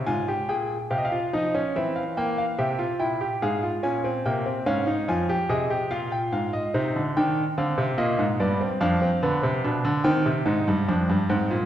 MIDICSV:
0, 0, Header, 1, 2, 480
1, 0, Start_track
1, 0, Key_signature, -4, "minor"
1, 0, Tempo, 839161
1, 38, Time_signature, 4, 2, 24, 8
1, 2437, Tempo, 829876
1, 6714, End_track
2, 0, Start_track
2, 0, Title_t, "Grand piano"
2, 0, Program_c, 0, 0
2, 37, Note_on_c, 0, 80, 70
2, 38, Note_on_c, 0, 44, 62
2, 38, Note_on_c, 0, 65, 82
2, 155, Note_off_c, 0, 65, 0
2, 162, Note_on_c, 0, 67, 74
2, 187, Note_off_c, 0, 80, 0
2, 188, Note_off_c, 0, 44, 0
2, 278, Note_off_c, 0, 67, 0
2, 279, Note_on_c, 0, 79, 64
2, 280, Note_on_c, 0, 68, 77
2, 282, Note_on_c, 0, 46, 59
2, 429, Note_off_c, 0, 79, 0
2, 430, Note_off_c, 0, 68, 0
2, 431, Note_off_c, 0, 46, 0
2, 517, Note_on_c, 0, 67, 76
2, 519, Note_on_c, 0, 48, 64
2, 519, Note_on_c, 0, 77, 62
2, 545, Note_off_c, 0, 77, 0
2, 559, Note_on_c, 0, 75, 57
2, 599, Note_on_c, 0, 77, 70
2, 600, Note_off_c, 0, 75, 0
2, 636, Note_off_c, 0, 67, 0
2, 639, Note_on_c, 0, 65, 76
2, 670, Note_off_c, 0, 48, 0
2, 700, Note_off_c, 0, 77, 0
2, 758, Note_off_c, 0, 65, 0
2, 762, Note_on_c, 0, 53, 68
2, 763, Note_on_c, 0, 63, 85
2, 765, Note_on_c, 0, 75, 63
2, 881, Note_off_c, 0, 63, 0
2, 884, Note_on_c, 0, 61, 81
2, 913, Note_off_c, 0, 53, 0
2, 914, Note_off_c, 0, 75, 0
2, 1001, Note_off_c, 0, 61, 0
2, 1006, Note_on_c, 0, 52, 69
2, 1007, Note_on_c, 0, 60, 81
2, 1008, Note_on_c, 0, 76, 68
2, 1119, Note_on_c, 0, 77, 61
2, 1123, Note_off_c, 0, 76, 0
2, 1155, Note_off_c, 0, 60, 0
2, 1238, Note_off_c, 0, 77, 0
2, 1242, Note_on_c, 0, 79, 71
2, 1244, Note_on_c, 0, 58, 80
2, 1359, Note_off_c, 0, 79, 0
2, 1362, Note_on_c, 0, 77, 62
2, 1391, Note_off_c, 0, 58, 0
2, 1468, Note_off_c, 0, 52, 0
2, 1478, Note_off_c, 0, 77, 0
2, 1478, Note_on_c, 0, 67, 79
2, 1479, Note_on_c, 0, 48, 69
2, 1479, Note_on_c, 0, 76, 66
2, 1595, Note_off_c, 0, 67, 0
2, 1595, Note_on_c, 0, 65, 81
2, 1627, Note_off_c, 0, 48, 0
2, 1628, Note_off_c, 0, 76, 0
2, 1713, Note_off_c, 0, 65, 0
2, 1713, Note_on_c, 0, 64, 77
2, 1713, Note_on_c, 0, 79, 68
2, 1714, Note_on_c, 0, 46, 61
2, 1832, Note_off_c, 0, 64, 0
2, 1834, Note_on_c, 0, 67, 74
2, 1863, Note_off_c, 0, 79, 0
2, 1864, Note_off_c, 0, 46, 0
2, 1953, Note_off_c, 0, 67, 0
2, 1958, Note_on_c, 0, 68, 86
2, 1959, Note_on_c, 0, 44, 69
2, 1959, Note_on_c, 0, 77, 72
2, 2075, Note_off_c, 0, 68, 0
2, 2076, Note_on_c, 0, 65, 68
2, 2107, Note_off_c, 0, 44, 0
2, 2107, Note_off_c, 0, 77, 0
2, 2191, Note_on_c, 0, 61, 73
2, 2193, Note_off_c, 0, 65, 0
2, 2193, Note_on_c, 0, 46, 72
2, 2193, Note_on_c, 0, 80, 68
2, 2311, Note_off_c, 0, 61, 0
2, 2312, Note_on_c, 0, 60, 81
2, 2343, Note_off_c, 0, 46, 0
2, 2343, Note_off_c, 0, 80, 0
2, 2431, Note_off_c, 0, 60, 0
2, 2434, Note_on_c, 0, 79, 69
2, 2435, Note_on_c, 0, 58, 69
2, 2436, Note_on_c, 0, 48, 66
2, 2552, Note_on_c, 0, 60, 75
2, 2553, Note_off_c, 0, 58, 0
2, 2584, Note_off_c, 0, 79, 0
2, 2585, Note_off_c, 0, 48, 0
2, 2670, Note_on_c, 0, 44, 72
2, 2670, Note_on_c, 0, 61, 86
2, 2670, Note_on_c, 0, 77, 75
2, 2671, Note_off_c, 0, 60, 0
2, 2788, Note_on_c, 0, 63, 82
2, 2790, Note_off_c, 0, 61, 0
2, 2822, Note_off_c, 0, 44, 0
2, 2822, Note_off_c, 0, 77, 0
2, 2910, Note_off_c, 0, 63, 0
2, 2913, Note_on_c, 0, 41, 73
2, 2914, Note_on_c, 0, 65, 86
2, 2914, Note_on_c, 0, 80, 68
2, 3033, Note_off_c, 0, 65, 0
2, 3034, Note_on_c, 0, 67, 88
2, 3064, Note_off_c, 0, 41, 0
2, 3065, Note_off_c, 0, 80, 0
2, 3149, Note_on_c, 0, 75, 68
2, 3151, Note_on_c, 0, 48, 72
2, 3151, Note_on_c, 0, 68, 86
2, 3154, Note_off_c, 0, 67, 0
2, 3272, Note_off_c, 0, 68, 0
2, 3272, Note_on_c, 0, 67, 79
2, 3301, Note_off_c, 0, 75, 0
2, 3302, Note_off_c, 0, 48, 0
2, 3389, Note_on_c, 0, 65, 89
2, 3391, Note_on_c, 0, 77, 71
2, 3392, Note_off_c, 0, 67, 0
2, 3392, Note_on_c, 0, 46, 71
2, 3511, Note_off_c, 0, 77, 0
2, 3512, Note_on_c, 0, 79, 66
2, 3543, Note_off_c, 0, 46, 0
2, 3631, Note_on_c, 0, 44, 62
2, 3631, Note_on_c, 0, 77, 66
2, 3632, Note_off_c, 0, 79, 0
2, 3751, Note_on_c, 0, 75, 69
2, 3752, Note_off_c, 0, 77, 0
2, 3783, Note_off_c, 0, 44, 0
2, 3860, Note_off_c, 0, 65, 0
2, 3872, Note_off_c, 0, 75, 0
2, 3873, Note_on_c, 0, 48, 80
2, 3873, Note_on_c, 0, 63, 76
2, 3874, Note_on_c, 0, 72, 73
2, 3993, Note_off_c, 0, 48, 0
2, 3998, Note_on_c, 0, 50, 71
2, 4024, Note_off_c, 0, 63, 0
2, 4025, Note_off_c, 0, 72, 0
2, 4116, Note_off_c, 0, 50, 0
2, 4118, Note_on_c, 0, 79, 79
2, 4119, Note_on_c, 0, 51, 86
2, 4120, Note_on_c, 0, 62, 70
2, 4267, Note_off_c, 0, 79, 0
2, 4268, Note_off_c, 0, 51, 0
2, 4268, Note_off_c, 0, 62, 0
2, 4355, Note_on_c, 0, 50, 86
2, 4356, Note_on_c, 0, 60, 70
2, 4356, Note_on_c, 0, 77, 69
2, 4471, Note_on_c, 0, 48, 85
2, 4473, Note_off_c, 0, 50, 0
2, 4505, Note_off_c, 0, 60, 0
2, 4505, Note_off_c, 0, 77, 0
2, 4587, Note_on_c, 0, 46, 89
2, 4587, Note_on_c, 0, 58, 79
2, 4588, Note_on_c, 0, 75, 82
2, 4591, Note_off_c, 0, 48, 0
2, 4708, Note_off_c, 0, 46, 0
2, 4709, Note_on_c, 0, 44, 88
2, 4739, Note_off_c, 0, 58, 0
2, 4739, Note_off_c, 0, 75, 0
2, 4830, Note_off_c, 0, 44, 0
2, 4830, Note_on_c, 0, 74, 72
2, 4832, Note_on_c, 0, 43, 89
2, 4832, Note_on_c, 0, 59, 76
2, 4951, Note_off_c, 0, 59, 0
2, 4952, Note_on_c, 0, 60, 75
2, 4981, Note_off_c, 0, 74, 0
2, 4982, Note_off_c, 0, 43, 0
2, 5066, Note_on_c, 0, 62, 82
2, 5068, Note_on_c, 0, 41, 100
2, 5069, Note_on_c, 0, 77, 83
2, 5071, Note_off_c, 0, 60, 0
2, 5187, Note_off_c, 0, 62, 0
2, 5189, Note_on_c, 0, 60, 75
2, 5218, Note_off_c, 0, 41, 0
2, 5308, Note_off_c, 0, 60, 0
2, 5310, Note_on_c, 0, 50, 89
2, 5310, Note_on_c, 0, 59, 82
2, 5428, Note_off_c, 0, 50, 0
2, 5428, Note_on_c, 0, 48, 86
2, 5459, Note_off_c, 0, 59, 0
2, 5546, Note_off_c, 0, 48, 0
2, 5551, Note_on_c, 0, 62, 75
2, 5553, Note_on_c, 0, 47, 80
2, 5667, Note_on_c, 0, 50, 96
2, 5668, Note_off_c, 0, 47, 0
2, 5699, Note_off_c, 0, 62, 0
2, 5766, Note_off_c, 0, 77, 0
2, 5780, Note_on_c, 0, 79, 82
2, 5782, Note_on_c, 0, 51, 105
2, 5783, Note_on_c, 0, 60, 86
2, 5786, Note_off_c, 0, 50, 0
2, 5903, Note_off_c, 0, 51, 0
2, 5906, Note_on_c, 0, 48, 79
2, 5935, Note_off_c, 0, 60, 0
2, 6021, Note_on_c, 0, 44, 91
2, 6021, Note_on_c, 0, 63, 78
2, 6025, Note_off_c, 0, 48, 0
2, 6143, Note_off_c, 0, 44, 0
2, 6148, Note_on_c, 0, 43, 94
2, 6174, Note_off_c, 0, 63, 0
2, 6268, Note_off_c, 0, 43, 0
2, 6269, Note_on_c, 0, 41, 90
2, 6269, Note_on_c, 0, 62, 74
2, 6388, Note_off_c, 0, 41, 0
2, 6389, Note_on_c, 0, 43, 96
2, 6420, Note_off_c, 0, 62, 0
2, 6506, Note_on_c, 0, 44, 96
2, 6506, Note_on_c, 0, 60, 85
2, 6509, Note_off_c, 0, 43, 0
2, 6626, Note_on_c, 0, 46, 96
2, 6627, Note_off_c, 0, 44, 0
2, 6658, Note_off_c, 0, 60, 0
2, 6714, Note_off_c, 0, 46, 0
2, 6714, Note_off_c, 0, 79, 0
2, 6714, End_track
0, 0, End_of_file